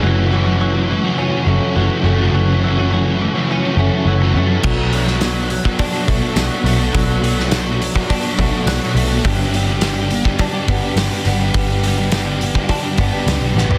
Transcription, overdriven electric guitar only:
X:1
M:4/4
L:1/16
Q:1/4=104
K:Bdor
V:1 name="Overdriven electric guitar"
[F,,C,F,A,CF]2 [F,A,CF] [F,A,CF] [F,,C,F,A,CF] [F,A,CF]2 [F,A,CF]2 [F,A,CF] [F,A,CF] [F,A,CF] [F,,C,F,A,CF]2 [F,A,CF] [F,A,CF] | [F,,C,F,A,CF]2 [F,A,CF] [F,A,CF] [F,,C,F,A,CF] [F,A,CF]2 [F,A,CF]2 [F,A,CF] [F,A,CF] [F,A,CF] [F,,C,F,A,CF]2 [F,A,CF] [F,A,CF] | [B,,F,B,DF]2 [F,B,DF] [B,DF] [B,,F,B,DF] [B,DF]2 [B,DF]2 [B,DF] [F,B,DF] [B,DF] [B,,F,B,DF]2 [F,B,DF] [B,DF] | [B,,F,B,DF]2 [F,B,DF] [B,DF] [B,,F,B,DF] [B,DF]2 [B,DF]2 [B,DF] [F,B,DF] [B,DF] [B,,F,B,DF]2 [F,B,DF] [B,DF] |
[=G,,D,=G,B,D=G]2 [G,B,DG] [G,B,DG] [G,,D,G,B,DG] [G,B,DG]2 [G,B,DG]2 [G,B,DG] [G,B,DG] [G,B,DG] [G,,D,G,B,DG]2 [G,B,DG] [G,B,DG] | [=G,,D,=G,B,D=G]2 [G,B,DG] [G,B,DG] [G,,D,G,B,DG] [G,B,DG]2 [G,B,DG]2 [G,B,DG] [G,B,DG] [G,B,DG] [G,,D,G,B,DG]2 [G,B,DG] [G,B,DG] |]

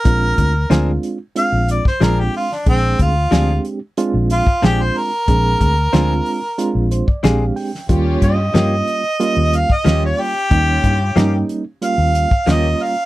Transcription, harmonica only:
X:1
M:4/4
L:1/16
Q:1/4=92
K:Bbmix
V:1 name="Harmonica"
B6 z2 f2 d c B G F D | C2 F4 z4 F2 G c B2- | B8- B2 z6 | z2 e8 f e2 _d G2- |
G6 z2 f4 e2 f2 |]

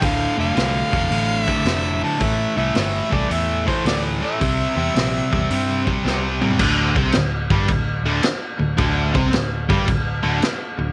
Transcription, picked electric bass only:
X:1
M:4/4
L:1/8
Q:"Swing" 1/4=110
K:Dm
V:1 name="Picked electric bass" clef=bass
D,,, F,,, C,, F,,, A,,,2 F,,,2 | A,,, C,, G,,, C,, E,,2 D,,2 | C,, E,, B,,, E,, G,,2 C,,2 | D,,, C,, D,,, G,,, D,,, D,,, z D,,, |
D,,, C,, D,,, G,,, D,,, D,,, z D,,, |]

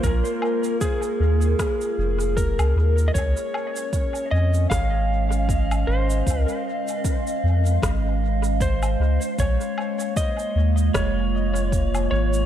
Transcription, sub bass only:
X:1
M:4/4
L:1/16
Q:"Swing 16ths" 1/4=77
K:Bbm
V:1 name="Sub bass" clef=bass
B,,, z4 z E,,2 z2 F,,,3 D,, E,,2 | D,, z4 z F,,2 A,,,6 A,,,2 | D,, z4 z F,,2 A,,,6 D,, z | B,,, z4 z E,,2 F,,,6 A,,,2 |]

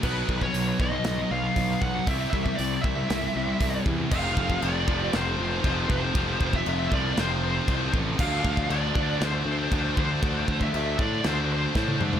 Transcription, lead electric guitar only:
X:1
M:4/4
L:1/16
Q:1/4=118
K:none
V:1 name="Lead electric guitar"
B3 ^c3 ^d4 f4 ^f2 | e2 e2 d2 e8 z2 | f4 d4 c6 c2- | c3 e3 d2 c2 c4 z2 |
f4 d4 c6 c2- | c3 e3 d2 c2 c4 z2 |]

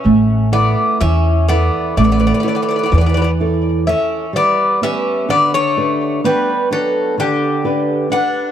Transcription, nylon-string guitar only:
X:1
M:9/8
L:1/8
Q:3/8=42
K:Glyd
V:1 name="Nylon-string guitar"
A, [EAe] E, [EAe] A, [EAc] E, [EAc] [EAc] | G, [B,GB] D, [DGB] B, [DBg] D, [DGB] [DGB] |]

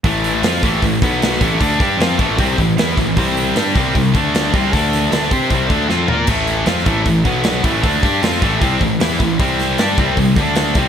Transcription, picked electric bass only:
X:1
M:4/4
L:1/8
Q:1/4=154
K:Am
V:1 name="Picked electric bass" clef=bass
A,,,2 F,, A,,, A,,, B,,,2 A,,, | D,, G,, F,, A,,, C,, A,,, E,, A,,, | C,,2 G,, C,, C,, D,,2 C,, | D,,2 D,, C, C,, D,, F,, _B,, |
A,,,2 F,, A,,, A,,, B,,,2 A,,, | D,, G,, F,, A,,, C,, A,,, E,, A,,, | C,,2 G,, C,, C,, D,,2 C,, |]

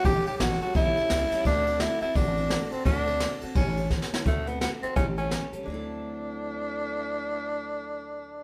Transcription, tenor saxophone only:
X:1
M:4/4
L:1/16
Q:"Swing" 1/4=171
K:Dmix
V:1 name="Tenor saxophone"
G2 G3/2 G/2 F2 F2 E8 | D4 E2 E2 D4- D3/2 D/2 C2 | D6 z2 ^C4 z4 | A,2 B,2 B,2 C2 ^C2 C4 z2 |
D16- | D16 |]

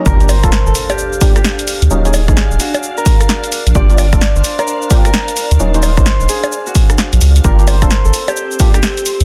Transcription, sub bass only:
X:1
M:4/4
L:1/16
Q:"Swing 16ths" 1/4=130
K:Gm
V:1 name="Sub bass" clef=bass
G,,,3 D,,, z G,,, z8 z D,, | E,,,3 B,,, z E,,, z8 z B,,, | G,,,3 D,,, z G,,, z8 z D,, | E,,,3 B,,, z E,,, z6 z B,,, _D,, z |
G,,,3 D,,, z G,,, z8 z D,, |]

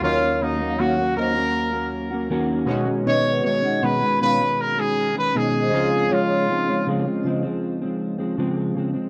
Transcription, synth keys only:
X:1
M:4/4
L:1/8
Q:1/4=79
K:Db
V:1 name="Synth keys"
[E,,G,B,DEf]6- [E,,G,B,DEf] [_C,A,DEG]- | [_C,A,DEG]6- [C,A,DEG] [D,A,DEF]- | [D,A,DEF]6- [D,A,DEF] z |]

